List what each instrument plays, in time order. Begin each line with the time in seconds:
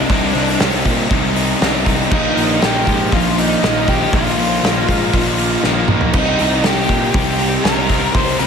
Already playing: lead electric guitar D4 D5, overdriven electric guitar D#4
0.09 picked electric bass C2, overdriven electric guitar C3 G3 C4 D#4, kick, open hi-hat
0.33 picked electric bass C2, overdriven electric guitar G3 C4 D#4, open hi-hat
0.59 picked electric bass C2, overdriven electric guitar C3 G3 C4 D#4, snare, open hi-hat
0.85 picked electric bass A#2, distorted electric guitar C3 G3 C4, kick, open hi-hat
1.09 picked electric bass C2, overdriven electric guitar C3 G3 C4 D#4, kick, open hi-hat
1.35 overdriven electric guitar G3 C4 D#4, open hi-hat
1.60 picked electric bass C2, overdriven electric guitar C3 G3 C4 D#4, snare, open hi-hat
1.85 distorted electric guitar C3, overdriven electric guitar G3 C4 D#4, kick, open hi-hat
2.10 picked electric bass A#1, overdriven electric guitar A#2 D#3 F3 A#3 D#4, lead electric guitar D#4 D#5, kick, crash
2.35 picked electric bass A#1, overdriven electric guitar F3 A#3 D#4, open hi-hat
2.60 picked electric bass A#1, distorted electric guitar A#2, overdriven electric guitar D#3 F3 A#3 D#4, lead electric guitar G4, snare, open hi-hat
2.65 lead electric guitar G5
2.87 picked electric bass G#2, distorted electric guitar A#2 F3 A#3, kick, open hi-hat
3.11 picked electric bass A#1, overdriven electric guitar A#2 D#3 F3 A#3 D#4, lead electric guitar F4 F5, kick, open hi-hat
3.36 overdriven electric guitar F3 A#3 D#4, lead electric guitar D#4 D#5, open hi-hat
3.61 picked electric bass A#1, distorted electric guitar A#2, overdriven electric guitar D#3 F3 A#3 D#4, snare, open hi-hat
3.86 distorted electric guitar A#2, overdriven electric guitar F3 A#3 D#4, lead electric guitar G4 G5, kick, open hi-hat
4.11 picked electric bass A#1, overdriven electric guitar A#2 D#3 F3 A#3 D#4, lead electric guitar F4, kick, open hi-hat
4.15 lead electric guitar F5
4.36 picked electric bass A#1, overdriven electric guitar F3 A#3 D#4, open hi-hat
4.61 picked electric bass A#1, distorted electric guitar A#2, overdriven electric guitar D#3 F3 A#3 D#4, snare, open hi-hat
4.87 picked electric bass G#2, distorted electric guitar A#2 F3 A#3, kick, open hi-hat
5.12 picked electric bass A#1, overdriven electric guitar A#2 D#3 F3 A#3 D#4, kick, open hi-hat
5.37 overdriven electric guitar F3 A#3 D#4, open hi-hat
5.62 picked electric bass A#1, distorted electric guitar A#2, overdriven electric guitar D#3 F3 A#3 D#4, snare
5.87 distorted electric guitar A#2, overdriven electric guitar F3 A#3 D#4, mid tom
6.01 floor tom
6.12 picked electric bass C2, overdriven electric guitar C3 G3 C4 D#4, lead electric guitar D#4, kick, crash
6.16 lead electric guitar D#5
6.38 picked electric bass C2, overdriven electric guitar G3 C4 D#4, open hi-hat
6.63 picked electric bass C2, overdriven electric guitar C3 G3 C4 D#4, lead electric guitar G4 G5, snare, open hi-hat
6.89 picked electric bass A#2, distorted electric guitar C3 G3 C4, kick, open hi-hat
7.13 picked electric bass C2, overdriven electric guitar C3 G3 C4 D#4, lead electric guitar G4 G5, kick, open hi-hat
7.38 overdriven electric guitar G3 C4 D#4, open hi-hat
7.63 picked electric bass C2, overdriven electric guitar C3 G3 C4 D#4, lead electric guitar A#4 A#5, snare, open hi-hat
7.89 distorted electric guitar C3, overdriven electric guitar G3 C4 D#4, kick, open hi-hat
8.13 picked electric bass C2, overdriven electric guitar C3 G3 C4 D#4, lead electric guitar C5 C6, kick, open hi-hat
8.39 picked electric bass C2, overdriven electric guitar G3 C4 D#4, lead electric guitar C5 C6, open hi-hat